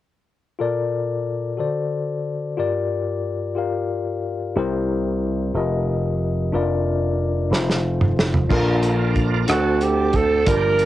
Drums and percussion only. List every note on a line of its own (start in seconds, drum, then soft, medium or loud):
7.53 snare soft
7.70 snare soft
8.01 mid tom medium
8.19 snare medium
8.34 floor tom medium
8.50 kick medium
8.50 crash medium
8.83 closed hi-hat soft
9.16 kick medium
9.16 closed hi-hat soft
9.48 cross-stick medium
9.48 closed hi-hat medium
9.81 closed hi-hat soft
10.13 kick medium
10.13 closed hi-hat soft
10.46 kick loud
10.46 closed hi-hat medium
10.79 closed hi-hat soft